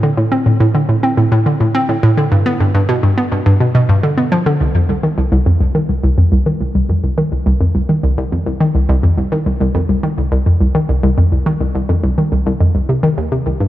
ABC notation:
X:1
M:4/4
L:1/16
Q:1/4=105
K:Gmix
V:1 name="Synth arpeggio sound" clef=bass
D, A,, C A,, A,, D, A,, C A,, A,, D, A,, C A,, A,, D, | G,, B, G,, G,, B,, G,, B, G,, G,, B,, B,, G,, D, B, F, D, | [K:Cm] C,, F,, C,, E, C,, C,, F,, C,, E, C,, C,, F,, C,, E, C,, C,, | F,, C,, E, C,, C,, F,, C,, E, C,, C,, F,, C,, E, C,, C,, F,, |
C,, E, C,, C,, F,, C,, E, C,, C,, F,, C,, E, C,, C,, F,, C,, | E, C,, C,, F,, C,, E, C,, C,, F,, C,, C, E, E,, C, C,, G,, |]